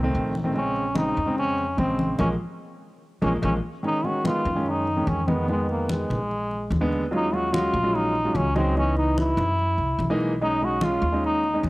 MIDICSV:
0, 0, Header, 1, 5, 480
1, 0, Start_track
1, 0, Key_signature, -5, "minor"
1, 0, Tempo, 410959
1, 641, Time_signature, 4, 2, 24, 8
1, 13659, End_track
2, 0, Start_track
2, 0, Title_t, "Trombone"
2, 0, Program_c, 0, 57
2, 665, Note_on_c, 0, 61, 89
2, 1101, Note_off_c, 0, 61, 0
2, 1141, Note_on_c, 0, 63, 90
2, 1579, Note_off_c, 0, 63, 0
2, 1618, Note_on_c, 0, 61, 99
2, 2058, Note_off_c, 0, 61, 0
2, 2100, Note_on_c, 0, 60, 82
2, 2539, Note_off_c, 0, 60, 0
2, 2566, Note_on_c, 0, 61, 84
2, 2680, Note_off_c, 0, 61, 0
2, 3782, Note_on_c, 0, 61, 89
2, 3892, Note_off_c, 0, 61, 0
2, 4027, Note_on_c, 0, 61, 87
2, 4135, Note_off_c, 0, 61, 0
2, 4508, Note_on_c, 0, 63, 100
2, 4741, Note_on_c, 0, 66, 89
2, 4759, Note_off_c, 0, 63, 0
2, 4973, Note_off_c, 0, 66, 0
2, 4989, Note_on_c, 0, 65, 94
2, 5480, Note_on_c, 0, 63, 95
2, 5498, Note_off_c, 0, 65, 0
2, 5949, Note_on_c, 0, 61, 89
2, 5967, Note_off_c, 0, 63, 0
2, 6185, Note_on_c, 0, 59, 84
2, 6203, Note_off_c, 0, 61, 0
2, 6414, Note_off_c, 0, 59, 0
2, 6424, Note_on_c, 0, 56, 89
2, 6637, Note_off_c, 0, 56, 0
2, 6664, Note_on_c, 0, 58, 79
2, 6877, Note_off_c, 0, 58, 0
2, 6907, Note_on_c, 0, 56, 89
2, 8047, Note_off_c, 0, 56, 0
2, 8345, Note_on_c, 0, 63, 100
2, 8580, Note_on_c, 0, 66, 91
2, 8597, Note_off_c, 0, 63, 0
2, 8807, Note_on_c, 0, 65, 98
2, 8824, Note_off_c, 0, 66, 0
2, 9299, Note_on_c, 0, 63, 97
2, 9317, Note_off_c, 0, 65, 0
2, 9778, Note_on_c, 0, 61, 88
2, 9796, Note_off_c, 0, 63, 0
2, 10009, Note_off_c, 0, 61, 0
2, 10014, Note_on_c, 0, 60, 88
2, 10231, Note_off_c, 0, 60, 0
2, 10262, Note_on_c, 0, 61, 94
2, 10475, Note_off_c, 0, 61, 0
2, 10495, Note_on_c, 0, 63, 83
2, 10711, Note_off_c, 0, 63, 0
2, 10741, Note_on_c, 0, 64, 94
2, 11882, Note_off_c, 0, 64, 0
2, 12180, Note_on_c, 0, 63, 92
2, 12434, Note_on_c, 0, 66, 88
2, 12451, Note_off_c, 0, 63, 0
2, 12669, Note_on_c, 0, 65, 91
2, 12687, Note_off_c, 0, 66, 0
2, 13133, Note_off_c, 0, 65, 0
2, 13150, Note_on_c, 0, 63, 96
2, 13581, Note_off_c, 0, 63, 0
2, 13659, End_track
3, 0, Start_track
3, 0, Title_t, "Grand piano"
3, 0, Program_c, 1, 0
3, 30, Note_on_c, 1, 51, 77
3, 35, Note_on_c, 1, 57, 68
3, 42, Note_on_c, 1, 60, 89
3, 372, Note_off_c, 1, 51, 0
3, 374, Note_off_c, 1, 57, 0
3, 378, Note_off_c, 1, 60, 0
3, 510, Note_on_c, 1, 51, 76
3, 521, Note_on_c, 1, 57, 65
3, 522, Note_on_c, 1, 60, 79
3, 600, Note_off_c, 1, 51, 0
3, 605, Note_off_c, 1, 57, 0
3, 606, Note_off_c, 1, 60, 0
3, 627, Note_on_c, 1, 49, 68
3, 636, Note_on_c, 1, 56, 59
3, 642, Note_on_c, 1, 60, 76
3, 971, Note_off_c, 1, 49, 0
3, 975, Note_off_c, 1, 56, 0
3, 978, Note_off_c, 1, 60, 0
3, 1102, Note_on_c, 1, 49, 66
3, 1105, Note_on_c, 1, 56, 64
3, 1109, Note_on_c, 1, 60, 69
3, 1364, Note_off_c, 1, 49, 0
3, 1366, Note_off_c, 1, 56, 0
3, 1368, Note_off_c, 1, 60, 0
3, 1469, Note_on_c, 1, 49, 69
3, 1472, Note_on_c, 1, 56, 58
3, 1481, Note_on_c, 1, 60, 79
3, 1896, Note_off_c, 1, 49, 0
3, 1898, Note_off_c, 1, 56, 0
3, 1902, Note_off_c, 1, 60, 0
3, 2069, Note_on_c, 1, 49, 69
3, 2075, Note_on_c, 1, 56, 63
3, 2082, Note_on_c, 1, 60, 85
3, 2538, Note_off_c, 1, 56, 0
3, 2554, Note_on_c, 1, 58, 81
3, 2556, Note_on_c, 1, 53, 78
3, 2556, Note_on_c, 1, 56, 87
3, 2557, Note_off_c, 1, 49, 0
3, 2563, Note_off_c, 1, 60, 0
3, 2712, Note_off_c, 1, 56, 0
3, 2712, Note_off_c, 1, 58, 0
3, 2713, Note_off_c, 1, 53, 0
3, 3757, Note_on_c, 1, 53, 84
3, 3760, Note_on_c, 1, 56, 84
3, 3761, Note_on_c, 1, 58, 80
3, 3913, Note_off_c, 1, 53, 0
3, 3915, Note_off_c, 1, 56, 0
3, 3916, Note_off_c, 1, 58, 0
3, 3995, Note_on_c, 1, 58, 77
3, 3996, Note_on_c, 1, 53, 82
3, 3998, Note_on_c, 1, 56, 86
3, 4152, Note_off_c, 1, 58, 0
3, 4153, Note_off_c, 1, 53, 0
3, 4154, Note_off_c, 1, 56, 0
3, 4470, Note_on_c, 1, 51, 72
3, 4477, Note_on_c, 1, 56, 64
3, 4483, Note_on_c, 1, 61, 78
3, 4645, Note_off_c, 1, 51, 0
3, 4649, Note_off_c, 1, 56, 0
3, 4651, Note_off_c, 1, 61, 0
3, 4715, Note_on_c, 1, 51, 60
3, 4719, Note_on_c, 1, 56, 58
3, 4727, Note_on_c, 1, 61, 69
3, 4887, Note_off_c, 1, 51, 0
3, 4890, Note_off_c, 1, 56, 0
3, 4893, Note_off_c, 1, 61, 0
3, 4952, Note_on_c, 1, 51, 67
3, 4961, Note_on_c, 1, 56, 67
3, 4968, Note_on_c, 1, 59, 80
3, 5210, Note_off_c, 1, 51, 0
3, 5215, Note_off_c, 1, 56, 0
3, 5218, Note_off_c, 1, 59, 0
3, 5316, Note_on_c, 1, 51, 67
3, 5328, Note_on_c, 1, 56, 67
3, 5330, Note_on_c, 1, 61, 81
3, 5656, Note_off_c, 1, 51, 0
3, 5662, Note_off_c, 1, 56, 0
3, 5663, Note_off_c, 1, 61, 0
3, 5801, Note_on_c, 1, 51, 65
3, 5804, Note_on_c, 1, 56, 57
3, 5813, Note_on_c, 1, 61, 71
3, 6054, Note_off_c, 1, 51, 0
3, 6056, Note_off_c, 1, 56, 0
3, 6060, Note_off_c, 1, 61, 0
3, 6163, Note_on_c, 1, 51, 86
3, 6168, Note_on_c, 1, 56, 76
3, 6173, Note_on_c, 1, 59, 89
3, 6389, Note_off_c, 1, 51, 0
3, 6394, Note_off_c, 1, 56, 0
3, 6401, Note_off_c, 1, 59, 0
3, 6406, Note_on_c, 1, 51, 70
3, 6411, Note_on_c, 1, 56, 61
3, 6419, Note_on_c, 1, 59, 74
3, 7172, Note_off_c, 1, 51, 0
3, 7175, Note_off_c, 1, 56, 0
3, 7178, Note_off_c, 1, 59, 0
3, 7954, Note_on_c, 1, 56, 82
3, 7955, Note_on_c, 1, 50, 86
3, 7961, Note_on_c, 1, 59, 97
3, 8210, Note_off_c, 1, 50, 0
3, 8210, Note_off_c, 1, 56, 0
3, 8213, Note_off_c, 1, 59, 0
3, 8304, Note_on_c, 1, 54, 74
3, 8309, Note_on_c, 1, 56, 68
3, 8315, Note_on_c, 1, 61, 69
3, 8319, Note_on_c, 1, 65, 77
3, 8481, Note_off_c, 1, 54, 0
3, 8483, Note_off_c, 1, 56, 0
3, 8486, Note_off_c, 1, 61, 0
3, 8488, Note_off_c, 1, 65, 0
3, 8547, Note_on_c, 1, 54, 68
3, 8554, Note_on_c, 1, 56, 56
3, 8557, Note_on_c, 1, 61, 59
3, 8562, Note_on_c, 1, 65, 72
3, 8722, Note_off_c, 1, 54, 0
3, 8726, Note_off_c, 1, 56, 0
3, 8727, Note_off_c, 1, 61, 0
3, 8730, Note_off_c, 1, 65, 0
3, 8786, Note_on_c, 1, 54, 71
3, 8787, Note_on_c, 1, 56, 68
3, 8794, Note_on_c, 1, 61, 68
3, 8798, Note_on_c, 1, 66, 81
3, 9045, Note_off_c, 1, 54, 0
3, 9046, Note_off_c, 1, 56, 0
3, 9049, Note_off_c, 1, 61, 0
3, 9051, Note_off_c, 1, 66, 0
3, 9146, Note_on_c, 1, 54, 70
3, 9148, Note_on_c, 1, 56, 66
3, 9149, Note_on_c, 1, 61, 61
3, 9155, Note_on_c, 1, 65, 77
3, 9489, Note_off_c, 1, 54, 0
3, 9490, Note_off_c, 1, 56, 0
3, 9491, Note_off_c, 1, 61, 0
3, 9494, Note_off_c, 1, 65, 0
3, 9635, Note_on_c, 1, 54, 60
3, 9635, Note_on_c, 1, 56, 57
3, 9644, Note_on_c, 1, 61, 57
3, 9647, Note_on_c, 1, 65, 71
3, 9890, Note_off_c, 1, 54, 0
3, 9890, Note_off_c, 1, 56, 0
3, 9894, Note_off_c, 1, 61, 0
3, 9895, Note_off_c, 1, 65, 0
3, 9987, Note_on_c, 1, 54, 88
3, 9994, Note_on_c, 1, 56, 78
3, 9998, Note_on_c, 1, 61, 73
3, 10000, Note_on_c, 1, 63, 90
3, 10229, Note_on_c, 1, 52, 70
3, 10230, Note_off_c, 1, 63, 0
3, 10234, Note_off_c, 1, 54, 0
3, 10237, Note_off_c, 1, 56, 0
3, 10239, Note_off_c, 1, 61, 0
3, 10239, Note_on_c, 1, 59, 64
3, 10248, Note_on_c, 1, 63, 71
3, 11002, Note_off_c, 1, 52, 0
3, 11007, Note_off_c, 1, 59, 0
3, 11011, Note_off_c, 1, 63, 0
3, 11795, Note_on_c, 1, 52, 86
3, 11796, Note_on_c, 1, 56, 77
3, 11800, Note_on_c, 1, 58, 74
3, 11803, Note_on_c, 1, 63, 97
3, 12048, Note_off_c, 1, 52, 0
3, 12049, Note_off_c, 1, 56, 0
3, 12051, Note_off_c, 1, 58, 0
3, 12052, Note_off_c, 1, 63, 0
3, 12163, Note_on_c, 1, 56, 71
3, 12168, Note_on_c, 1, 61, 66
3, 12172, Note_on_c, 1, 63, 75
3, 12328, Note_off_c, 1, 56, 0
3, 12331, Note_off_c, 1, 61, 0
3, 12333, Note_off_c, 1, 63, 0
3, 12398, Note_on_c, 1, 56, 64
3, 12401, Note_on_c, 1, 61, 61
3, 12411, Note_on_c, 1, 63, 67
3, 12566, Note_off_c, 1, 56, 0
3, 12567, Note_off_c, 1, 61, 0
3, 12572, Note_off_c, 1, 63, 0
3, 12639, Note_on_c, 1, 56, 73
3, 12643, Note_on_c, 1, 61, 65
3, 12647, Note_on_c, 1, 65, 84
3, 12890, Note_off_c, 1, 56, 0
3, 12892, Note_off_c, 1, 61, 0
3, 12894, Note_off_c, 1, 65, 0
3, 12992, Note_on_c, 1, 56, 69
3, 13003, Note_on_c, 1, 61, 66
3, 13009, Note_on_c, 1, 63, 76
3, 13330, Note_off_c, 1, 56, 0
3, 13335, Note_off_c, 1, 61, 0
3, 13338, Note_off_c, 1, 63, 0
3, 13474, Note_on_c, 1, 56, 61
3, 13477, Note_on_c, 1, 61, 59
3, 13487, Note_on_c, 1, 63, 77
3, 13659, Note_off_c, 1, 56, 0
3, 13659, Note_off_c, 1, 61, 0
3, 13659, Note_off_c, 1, 63, 0
3, 13659, End_track
4, 0, Start_track
4, 0, Title_t, "Upright bass"
4, 0, Program_c, 2, 32
4, 169, Note_on_c, 2, 34, 84
4, 1295, Note_off_c, 2, 34, 0
4, 1364, Note_on_c, 2, 41, 80
4, 2037, Note_off_c, 2, 41, 0
4, 2079, Note_on_c, 2, 34, 80
4, 2528, Note_off_c, 2, 34, 0
4, 2564, Note_on_c, 2, 34, 84
4, 2742, Note_off_c, 2, 34, 0
4, 3764, Note_on_c, 2, 34, 91
4, 3943, Note_off_c, 2, 34, 0
4, 4006, Note_on_c, 2, 34, 91
4, 4184, Note_off_c, 2, 34, 0
4, 5199, Note_on_c, 2, 42, 84
4, 5875, Note_off_c, 2, 42, 0
4, 5922, Note_on_c, 2, 41, 85
4, 7051, Note_off_c, 2, 41, 0
4, 7128, Note_on_c, 2, 34, 81
4, 7798, Note_off_c, 2, 34, 0
4, 7833, Note_on_c, 2, 39, 89
4, 8966, Note_off_c, 2, 39, 0
4, 9035, Note_on_c, 2, 34, 89
4, 9711, Note_off_c, 2, 34, 0
4, 9751, Note_on_c, 2, 37, 88
4, 10884, Note_off_c, 2, 37, 0
4, 10945, Note_on_c, 2, 42, 91
4, 11398, Note_off_c, 2, 42, 0
4, 11421, Note_on_c, 2, 36, 68
4, 11652, Note_off_c, 2, 36, 0
4, 11663, Note_on_c, 2, 35, 86
4, 12799, Note_off_c, 2, 35, 0
4, 12866, Note_on_c, 2, 39, 87
4, 13544, Note_off_c, 2, 39, 0
4, 13587, Note_on_c, 2, 41, 87
4, 13659, Note_off_c, 2, 41, 0
4, 13659, End_track
5, 0, Start_track
5, 0, Title_t, "Drums"
5, 173, Note_on_c, 9, 63, 31
5, 290, Note_off_c, 9, 63, 0
5, 409, Note_on_c, 9, 63, 73
5, 525, Note_off_c, 9, 63, 0
5, 650, Note_on_c, 9, 63, 30
5, 767, Note_off_c, 9, 63, 0
5, 887, Note_on_c, 9, 63, 30
5, 1004, Note_off_c, 9, 63, 0
5, 1113, Note_on_c, 9, 63, 85
5, 1230, Note_off_c, 9, 63, 0
5, 1360, Note_on_c, 9, 63, 30
5, 1476, Note_off_c, 9, 63, 0
5, 1612, Note_on_c, 9, 63, 31
5, 1729, Note_off_c, 9, 63, 0
5, 1847, Note_on_c, 9, 63, 31
5, 1964, Note_off_c, 9, 63, 0
5, 2081, Note_on_c, 9, 63, 72
5, 2198, Note_off_c, 9, 63, 0
5, 2324, Note_on_c, 9, 63, 75
5, 2441, Note_off_c, 9, 63, 0
5, 2555, Note_on_c, 9, 63, 91
5, 2672, Note_off_c, 9, 63, 0
5, 3763, Note_on_c, 9, 63, 86
5, 3880, Note_off_c, 9, 63, 0
5, 4004, Note_on_c, 9, 63, 87
5, 4120, Note_off_c, 9, 63, 0
5, 4490, Note_on_c, 9, 63, 34
5, 4606, Note_off_c, 9, 63, 0
5, 4725, Note_on_c, 9, 63, 31
5, 4842, Note_off_c, 9, 63, 0
5, 4964, Note_on_c, 9, 63, 92
5, 5081, Note_off_c, 9, 63, 0
5, 5208, Note_on_c, 9, 63, 32
5, 5325, Note_off_c, 9, 63, 0
5, 5442, Note_on_c, 9, 63, 32
5, 5559, Note_off_c, 9, 63, 0
5, 5691, Note_on_c, 9, 63, 33
5, 5807, Note_off_c, 9, 63, 0
5, 5923, Note_on_c, 9, 63, 74
5, 6040, Note_off_c, 9, 63, 0
5, 6168, Note_on_c, 9, 63, 77
5, 6284, Note_off_c, 9, 63, 0
5, 6407, Note_on_c, 9, 63, 34
5, 6523, Note_off_c, 9, 63, 0
5, 6647, Note_on_c, 9, 63, 33
5, 6764, Note_off_c, 9, 63, 0
5, 6885, Note_on_c, 9, 63, 89
5, 7002, Note_off_c, 9, 63, 0
5, 7137, Note_on_c, 9, 63, 33
5, 7137, Note_on_c, 9, 64, 79
5, 7254, Note_off_c, 9, 63, 0
5, 7254, Note_off_c, 9, 64, 0
5, 7374, Note_on_c, 9, 63, 30
5, 7491, Note_off_c, 9, 63, 0
5, 7607, Note_on_c, 9, 63, 31
5, 7724, Note_off_c, 9, 63, 0
5, 7847, Note_on_c, 9, 63, 80
5, 7964, Note_off_c, 9, 63, 0
5, 8089, Note_on_c, 9, 63, 30
5, 8206, Note_off_c, 9, 63, 0
5, 8330, Note_on_c, 9, 63, 35
5, 8447, Note_off_c, 9, 63, 0
5, 8572, Note_on_c, 9, 63, 34
5, 8689, Note_off_c, 9, 63, 0
5, 8807, Note_on_c, 9, 63, 85
5, 8924, Note_off_c, 9, 63, 0
5, 9049, Note_on_c, 9, 63, 33
5, 9166, Note_off_c, 9, 63, 0
5, 9292, Note_on_c, 9, 63, 32
5, 9409, Note_off_c, 9, 63, 0
5, 9526, Note_on_c, 9, 63, 34
5, 9643, Note_off_c, 9, 63, 0
5, 9761, Note_on_c, 9, 63, 74
5, 9877, Note_off_c, 9, 63, 0
5, 9997, Note_on_c, 9, 63, 75
5, 10114, Note_off_c, 9, 63, 0
5, 10245, Note_on_c, 9, 63, 37
5, 10362, Note_off_c, 9, 63, 0
5, 10473, Note_on_c, 9, 63, 33
5, 10590, Note_off_c, 9, 63, 0
5, 10719, Note_on_c, 9, 63, 90
5, 10836, Note_off_c, 9, 63, 0
5, 10959, Note_on_c, 9, 63, 35
5, 10959, Note_on_c, 9, 64, 82
5, 11075, Note_off_c, 9, 63, 0
5, 11075, Note_off_c, 9, 64, 0
5, 11200, Note_on_c, 9, 63, 33
5, 11317, Note_off_c, 9, 63, 0
5, 11434, Note_on_c, 9, 63, 32
5, 11551, Note_off_c, 9, 63, 0
5, 11679, Note_on_c, 9, 63, 77
5, 11796, Note_off_c, 9, 63, 0
5, 11918, Note_on_c, 9, 63, 32
5, 12035, Note_off_c, 9, 63, 0
5, 12171, Note_on_c, 9, 63, 34
5, 12288, Note_off_c, 9, 63, 0
5, 12409, Note_on_c, 9, 63, 34
5, 12526, Note_off_c, 9, 63, 0
5, 12629, Note_on_c, 9, 63, 88
5, 12746, Note_off_c, 9, 63, 0
5, 12877, Note_on_c, 9, 63, 33
5, 12994, Note_off_c, 9, 63, 0
5, 13130, Note_on_c, 9, 63, 34
5, 13247, Note_off_c, 9, 63, 0
5, 13355, Note_on_c, 9, 63, 33
5, 13472, Note_off_c, 9, 63, 0
5, 13596, Note_on_c, 9, 63, 73
5, 13659, Note_off_c, 9, 63, 0
5, 13659, End_track
0, 0, End_of_file